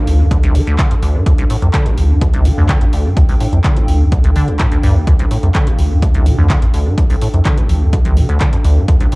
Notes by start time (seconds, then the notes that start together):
Already playing: D4 A4 F5 A5
0.07 D2, open hi-hat
0.19 G2
0.31 D2, kick, closed hi-hat
0.41 C2 G5, closed hi-hat
0.55 F3, open hi-hat
0.67 D2, closed hi-hat
0.79 D3, kick, clap, closed hi-hat
0.91 F2, closed hi-hat
1.02 D2, open hi-hat
1.15 G2
1.26 D2, kick, closed hi-hat
1.38 C2, closed hi-hat
1.50 A2, open hi-hat
1.62 C2 F2, closed hi-hat
1.74 D3, kick, clap, closed hi-hat
1.86 D1, closed hi-hat
1.98 D2, open hi-hat
2.10 G2
2.21 D2, kick, closed hi-hat
2.34 C2, closed hi-hat
2.45 F3, open hi-hat
2.57 D2 F2
2.69 D3, kick, clap, closed hi-hat
2.81 A1 F2, closed hi-hat
2.93 D2, open hi-hat
3.05 G2
3.17 D2, kick, closed hi-hat
3.29 C2, open hi-hat
3.40 A2, open hi-hat
3.52 C2 F2, closed hi-hat
3.64 D3, kick, clap, closed hi-hat
3.76 D1, closed hi-hat
3.88 D2, open hi-hat
4.01 G2
4.12 D2, kick, closed hi-hat
4.24 C2, closed hi-hat
4.36 D3, open hi-hat
4.48 C2, closed hi-hat
4.59 A2, kick, clap, closed hi-hat
4.72 D2, closed hi-hat
4.83 D2 G2, open hi-hat
4.96 D2
5.07 D2, kick, closed hi-hat
5.19 C2, closed hi-hat
5.31 A2, open hi-hat
5.43 C2 F2, closed hi-hat
5.55 D3, kick, clap, closed hi-hat
5.67 D1, closed hi-hat
5.79 D2, open hi-hat
5.91 G2
6.02 D2, kick, closed hi-hat
6.15 C2, closed hi-hat
6.26 C3, open hi-hat, mid tom
6.38 D2 F2, mid tom
6.50 D3, kick, clap, closed hi-hat
6.62 A1 F2, closed hi-hat
6.74 D2, open hi-hat
6.86 G2
6.98 D2, kick, closed hi-hat
7.10 C2, open hi-hat
7.22 A2, open hi-hat
7.34 C2 F2, closed hi-hat
7.45 D3, kick, clap, closed hi-hat, mid tom
7.58 D1, closed hi-hat
7.69 D2, open hi-hat, mid tom
7.81 G2
7.93 D2, kick, closed hi-hat
8.05 C2, closed hi-hat, mid tom
8.17 C3, open hi-hat, mid tom
8.29 D2, closed hi-hat
8.40 D3, kick, clap, closed hi-hat
8.53 F2, closed hi-hat
8.64 D2, open hi-hat
8.77 G2
8.88 D2, kick, closed hi-hat
9.00 C2, closed hi-hat
9.12 A2, open hi-hat